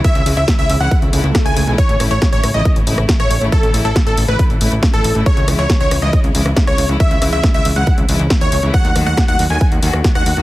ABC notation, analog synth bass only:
X:1
M:4/4
L:1/16
Q:1/4=138
K:C#m
V:1 name="Analog synth bass" clef=bass
z C,, C,, C,, z C,, C,, C,, z C,, C,, C,, z C,, C,, B,,, | z A,,, A,,, A,,, z A,,, A,,, A,,, z A,,, A,,, A,,, z A,,, A,,, A,,, | z A,,, A,,, A,,, z A,,, A,,, A,,, z A,,, A,,, A,,, z A,,, A,,, A,,, | z C,, C,, C,, z C,, C,, C,, z C,, C,, C,, z C,, C,, C,, |
z C,, C,, C,, z C,, C,, C,, z C,, C,, C,, z D,, C,, C,, | z D,, D,, D,, z D,, D,, D,, z D,, D,, D,, z D,, D,, D,, |]